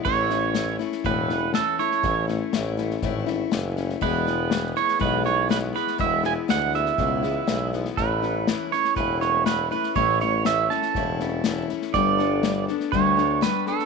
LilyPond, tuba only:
\new Staff \with { instrumentName = "Tuba" } { \clef bass \time 4/4 \key a \major \tempo 4 = 121 a,,2 e,,4. r8 | a,,4 a,,4 gis,,4 fis,,4 | e,,2 b,,2 | e,,4 d,4 cis,4 b,,4 |
a,,4. r8 e,,2 | a,,2 e,,2 | g,,2 d,4. r8 | }